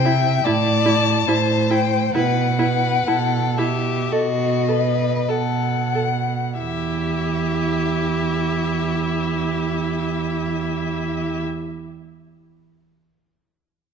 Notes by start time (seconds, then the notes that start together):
Already playing: C3 G5
0.05 E4 E5
0.44 A2 E4 D5 A5
0.85 E4
1.27 A2 E4 C5
1.70 E4 G5
2.14 B2 E4 B4 F#5
2.59 E4 B4
3.08 B2 E4 A4
3.58 E4 G4 E5
4.12 B2 F#4 A4 D#5
4.68 A4 B4
5.28 B2 A4 F#5
5.94 A4
6.58 E2 E4 G4 E5